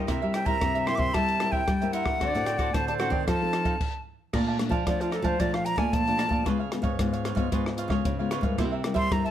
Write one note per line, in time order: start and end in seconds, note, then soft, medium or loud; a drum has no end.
0.00 0.44 A#3 medium
0.00 0.44 E4 medium
0.00 0.44 G4 medium
0.00 0.09 D#5 medium
0.07 0.20 C3 medium
0.07 0.60 C3 medium
0.07 0.20 E4 medium
0.07 0.20 A#4 medium
0.07 0.21 C5 medium
0.07 1.94 E5 loud
0.07 0.21 E5 medium
0.07 kick medium
0.07 cross-stick medium
0.07 closed hi-hat medium
0.22 0.56 G3 medium
0.22 0.32 A#4 soft
0.22 0.33 C5 soft
0.22 0.33 E5 medium
0.33 0.44 E4 soft
0.33 0.45 A#4 soft
0.33 0.45 C5 soft
0.33 0.45 E5 medium
0.33 0.47 G5 medium
0.33 cross-stick medium
0.33 closed hi-hat soft
0.46 0.83 A#3 medium
0.46 0.56 E4 medium
0.46 0.84 E4 medium
0.46 0.84 G4 medium
0.46 0.56 A#4 medium
0.46 0.56 C5 medium
0.46 0.56 E5 medium
0.46 0.88 A#5 medium
0.46 kick medium
0.46 closed hi-hat soft
0.61 1.13 G2 medium
0.61 0.96 C3 medium
0.61 kick medium
0.61 cross-stick medium
0.61 closed hi-hat medium
0.75 0.86 A#4 soft
0.75 0.86 C5 soft
0.75 0.86 E5 medium
0.75 closed hi-hat soft
0.86 1.37 A#3 medium
0.86 0.99 E4 medium
0.86 1.37 E4 medium
0.86 1.37 G4 medium
0.86 0.99 A#4 medium
0.86 0.98 C5 medium
0.86 0.97 E5 medium
0.86 0.97 C6 loud
0.86 cross-stick medium
0.86 closed hi-hat soft
0.95 1.10 C3 medium
0.95 1.12 E5 soft
0.95 1.15 C6 loud
0.95 1.00 D6 medium
0.99 1.13 A#4 soft
0.99 1.13 C5 soft
0.99 kick medium
1.14 1.66 C3 medium
1.14 1.60 G3 loud
1.14 1.38 E4 medium
1.14 1.39 A#4 medium
1.14 1.39 C5 medium
1.14 1.40 E5 medium
1.14 1.53 A5 loud
1.14 kick medium
1.14 cross-stick medium
1.14 closed hi-hat medium
1.28 closed hi-hat soft
1.39 1.66 A#3 medium
1.39 1.51 E4 soft
1.39 1.66 E4 medium
1.39 1.67 G4 medium
1.39 1.51 A#4 soft
1.39 1.51 C5 medium
1.39 1.52 E5 medium
1.39 cross-stick medium
1.39 closed hi-hat soft
1.52 1.62 E4 medium
1.52 1.63 A#4 medium
1.52 1.63 C5 medium
1.52 1.63 E5 medium
1.52 1.94 G5 medium
1.52 kick medium
1.68 2.19 G2 medium
1.68 2.13 G3 medium
1.68 kick medium
1.68 cross-stick medium
1.68 closed hi-hat medium
1.81 2.18 A#3 medium
1.81 2.18 E4 medium
1.81 2.18 G4 medium
1.81 1.92 A#4 soft
1.81 1.93 C5 soft
1.81 1.93 E5 soft
1.81 closed hi-hat soft
1.93 2.19 E4 medium
1.93 2.20 A#4 medium
1.93 2.20 C5 medium
1.93 2.20 E5 medium
1.93 2.47 F#5 medium
1.93 closed hi-hat medium
2.06 kick medium
2.06 cross-stick medium
2.20 2.32 D3 medium
2.20 2.72 D3 medium
2.20 2.29 C4 medium
2.20 2.33 F#4 medium
2.20 2.30 F#4 soft
2.20 2.33 A4 medium
2.20 2.30 A4 medium
2.20 2.33 C5 medium
2.20 2.76 D5 loud
2.20 2.33 D5 medium
2.20 kick medium
2.20 cross-stick medium
2.20 closed hi-hat medium
2.34 2.68 A2 medium
2.34 2.71 C4 medium
2.34 2.71 F#4 medium
2.34 2.45 A4 soft
2.34 2.71 A4 medium
2.34 2.46 C5 soft
2.34 2.47 D5 soft
2.34 closed hi-hat soft
2.46 2.57 F#4 soft
2.46 2.58 A4 soft
2.46 2.58 C5 soft
2.46 2.58 D5 soft
2.46 2.59 G5 medium
2.46 cross-stick medium
2.46 closed hi-hat soft
2.58 2.69 F#4 medium
2.58 2.69 A4 medium
2.58 2.69 C5 medium
2.58 2.69 D5 medium
2.58 2.75 F#5 medium
2.58 kick medium
2.58 closed hi-hat soft
2.73 3.25 A2 medium
2.73 3.08 D3 medium
2.73 2.90 C4 soft
2.73 2.90 F#4 soft
2.73 2.90 A4 medium
2.73 3.28 C5 loud
2.73 2.87 A5 medium
2.73 kick medium
2.73 cross-stick medium
2.73 closed hi-hat medium
2.88 2.98 A4 soft
2.88 2.99 C5 soft
2.88 3.00 D5 medium
2.88 2.94 A5 medium
2.88 closed hi-hat soft
2.99 3.25 C4 medium
2.99 3.12 F#4 medium
2.99 3.25 F#4 medium
2.99 3.12 A4 medium
2.99 3.25 A4 medium
2.99 3.11 C5 medium
2.99 3.10 D5 medium
2.99 3.13 F#5 medium
2.99 cross-stick medium
2.99 closed hi-hat soft
3.10 3.23 D#3 medium
3.10 3.26 A4 soft
3.10 3.26 C5 soft
3.10 3.25 D5 soft
3.10 3.26 G5 medium
3.10 kick medium
3.26 3.78 F3 soft
3.26 3.73 F3 medium
3.26 3.37 C4 soft
3.26 3.51 D#4 medium
3.26 3.37 D#4 medium
3.26 3.80 A4 medium
3.26 3.52 A4 medium
3.26 3.37 A4 medium
3.26 3.52 C5 medium
3.26 3.53 F5 medium
3.26 4.03 A5 medium
3.26 kick medium
3.26 cross-stick medium
3.26 closed hi-hat medium
3.42 3.77 C4 medium
3.42 3.77 D#4 medium
3.42 3.77 A4 medium
3.52 3.63 D#4 soft
3.52 3.64 A4 medium
3.52 3.64 C5 medium
3.52 3.64 F5 medium
3.52 cross-stick medium
3.52 closed hi-hat soft
3.64 3.75 D#4 medium
3.64 3.75 A4 medium
3.64 3.75 C5 medium
3.64 3.75 F5 medium
3.64 kick medium
3.64 closed hi-hat soft
3.81 kick medium
3.81 crash medium
4.33 4.68 A#2 medium
4.33 4.84 A#2 medium
4.33 4.56 A3 medium
4.33 4.56 D4 medium
4.33 4.56 F4 medium
4.33 4.46 A#4 medium
4.33 4.46 D5 medium
4.33 4.46 F5 medium
4.33 4.46 A5 medium
4.33 kick medium
4.33 cross-stick medium
4.33 crash medium
4.47 4.57 D5 soft
4.47 4.58 F5 soft
4.47 4.58 A5 medium
4.58 4.76 A3 medium
4.58 4.76 D4 medium
4.58 4.76 F4 medium
4.58 muted cavaquinho stroke soft
4.58 cross-stick medium
4.58 closed hi-hat soft
4.69 4.82 F3 loud
4.69 4.98 D5 medium
4.69 4.98 F5 medium
4.69 4.97 A5 medium
4.69 kick medium
4.69 closed hi-hat soft
4.87 5.21 F3 medium
4.87 5.37 F3 soft
4.87 5.22 A3 soft
4.87 5.23 D4 medium
4.87 5.23 F4 medium
4.87 5.03 D5 medium
4.87 kick medium
4.87 cross-stick medium
4.87 closed hi-hat medium
5.00 5.14 F4 medium
5.00 5.11 D5 soft
5.00 5.11 F5 soft
5.00 5.12 A5 soft
5.00 closed hi-hat soft
5.11 5.26 A4 medium
5.11 5.24 A#4 medium
5.11 5.24 D5 soft
5.11 5.24 F5 medium
5.11 5.23 A5 medium
5.11 cross-stick medium
5.11 closed hi-hat soft
5.22 5.35 F3 loud
5.22 5.35 A3 medium
5.22 5.35 D4 medium
5.22 5.35 F4 medium
5.22 5.41 C5 medium
5.22 5.38 D5 soft
5.22 5.38 F5 medium
5.22 5.38 A5 medium
5.22 kick medium
5.22 closed hi-hat soft
5.39 5.91 A#2 medium
5.39 5.74 F3 loud
5.39 5.65 A3 medium
5.39 5.65 D4 medium
5.39 5.65 F4 medium
5.39 5.52 A#4 medium
5.39 5.52 D5 medium
5.39 5.55 D5 medium
5.39 5.52 F5 medium
5.39 5.52 A5 medium
5.39 kick medium
5.39 closed hi-hat medium
5.54 5.67 F5 medium
5.54 muted cavaquinho stroke soft
5.54 cross-stick medium
5.54 closed hi-hat soft
5.64 5.78 A#4 soft
5.64 5.77 D5 medium
5.64 5.77 F5 medium
5.64 5.76 A5 soft
5.64 5.79 A#5 loud
5.64 closed hi-hat medium
5.76 5.89 A#2 medium
5.76 6.01 A3 medium
5.76 6.01 D4 medium
5.76 6.02 F4 medium
5.76 6.05 D5 medium
5.76 6.04 F5 medium
5.76 5.95 G#5 medium
5.76 6.04 A5 medium
5.76 kick medium
5.76 cross-stick medium
5.93 6.27 A#2 medium
5.93 6.44 F3 medium
5.93 6.46 A5 loud
5.93 kick medium
5.93 closed hi-hat medium
6.06 6.45 A3 medium
6.06 6.45 D4 medium
6.06 6.45 F4 medium
6.06 6.17 D5 soft
6.06 6.18 F5 soft
6.06 6.18 A5 soft
6.06 closed hi-hat soft
6.18 6.31 A#4 medium
6.18 6.31 D5 medium
6.18 6.30 F5 medium
6.18 6.29 A5 medium
6.18 cross-stick medium
6.18 closed hi-hat soft
6.29 6.46 A#2 medium
6.29 6.45 D5 soft
6.29 6.44 F5 medium
6.29 6.44 A5 medium
6.29 kick medium
6.45 6.97 C#3 medium
6.45 6.80 C#3 medium
6.45 6.62 G#3 medium
6.45 6.62 B3 medium
6.45 6.58 F4 medium
6.45 6.62 F4 medium
6.45 6.58 B4 medium
6.45 6.59 C#5 medium
6.45 6.58 F5 medium
6.45 kick medium
6.45 cross-stick medium
6.45 closed hi-hat medium
6.59 6.70 B4 soft
6.59 6.71 C#5 soft
6.59 6.71 F5 medium
6.71 6.88 G#3 medium
6.71 6.88 B3 medium
6.71 6.88 F4 medium
6.71 muted cavaquinho stroke soft
6.71 cross-stick medium
6.71 closed hi-hat medium
6.82 6.95 G#2 medium
6.82 7.11 B4 medium
6.82 7.10 C#5 medium
6.82 7.10 F5 medium
6.82 kick medium
6.82 closed hi-hat soft
6.99 7.33 G#2 medium
6.99 7.50 G#2 medium
6.99 7.35 G#3 soft
6.99 7.35 B3 medium
6.99 7.35 F4 medium
6.99 kick medium
6.99 cross-stick medium
6.99 closed hi-hat medium
7.12 7.24 B4 soft
7.12 7.24 C#5 medium
7.12 7.24 F5 medium
7.12 closed hi-hat soft
7.24 7.37 F4 medium
7.24 7.37 B4 soft
7.24 7.36 C#5 medium
7.24 7.35 F5 medium
7.24 cross-stick medium
7.24 closed hi-hat soft
7.35 7.48 G#2 medium
7.35 7.47 G#3 medium
7.35 7.47 B3 medium
7.35 7.47 F4 medium
7.35 7.51 B4 medium
7.35 7.50 C#5 medium
7.35 7.50 F5 medium
7.35 kick medium
7.35 closed hi-hat soft
7.52 7.86 G#2 loud
7.52 8.03 C#3 medium
7.52 7.88 G#3 medium
7.52 7.88 B3 medium
7.52 7.64 F4 medium
7.52 7.88 F4 medium
7.52 7.65 B4 medium
7.52 7.65 C#5 medium
7.52 7.65 F5 medium
7.52 kick medium
7.52 closed hi-hat medium
7.66 muted cavaquinho stroke soft
7.66 cross-stick medium
7.77 7.90 F4 soft
7.77 7.90 B4 soft
7.77 7.89 C#5 medium
7.77 7.88 F5 medium
7.77 closed hi-hat soft
7.88 8.01 C#3 medium
7.88 8.13 G#3 medium
7.88 8.13 B3 medium
7.88 8.14 F4 medium
7.88 8.17 B4 soft
7.88 8.17 C#5 medium
7.88 8.16 F5 medium
7.88 kick medium
7.88 cross-stick medium
8.05 8.56 G#2 medium
8.05 8.39 C#3 medium
8.05 kick medium
8.05 closed hi-hat medium
8.19 8.42 G#3 medium
8.19 8.42 B3 medium
8.19 8.42 F4 medium
8.19 8.30 B4 soft
8.19 8.31 C#5 soft
8.19 8.31 F5 soft
8.31 8.43 F4 medium
8.31 8.43 B4 medium
8.31 8.42 C#5 medium
8.31 8.42 F5 medium
8.31 cross-stick medium
8.31 closed hi-hat soft
8.41 8.56 G#2 medium
8.41 8.80 G3 medium
8.41 8.80 A#3 medium
8.41 8.80 E4 medium
8.41 8.57 B4 soft
8.41 8.56 C#5 soft
8.41 8.56 F5 soft
8.41 kick medium
8.41 closed hi-hat soft
8.58 8.92 C3 medium
8.58 9.09 C3 medium
8.58 8.70 E4 medium
8.58 8.71 A#4 medium
8.58 8.71 C5 medium
8.58 8.70 E5 medium
8.58 kick medium
8.58 cross-stick medium
8.58 closed hi-hat medium
8.72 8.82 A#4 soft
8.72 8.82 C5 soft
8.72 8.83 E5 medium
8.83 9.07 G3 medium
8.83 9.07 A#3 medium
8.83 9.07 E4 medium
8.83 muted cavaquinho stroke soft
8.83 cross-stick medium
8.83 closed hi-hat soft
8.94 9.07 G3 loud
8.94 9.23 A#4 medium
8.94 9.22 C5 medium
8.94 9.22 E5 medium
8.94 9.14 C6 loud
8.94 kick medium
8.94 closed hi-hat soft
9.11 9.31 G2 medium
9.11 9.31 G3 medium
9.11 9.31 A#3 medium
9.11 9.31 E4 medium
9.11 9.27 A#5 medium
9.11 kick loud
9.11 cross-stick medium
9.11 closed hi-hat medium
9.24 9.31 A#4 soft
9.24 9.31 C5 soft
9.24 9.31 E5 medium
9.24 9.31 A5 medium
9.24 closed hi-hat soft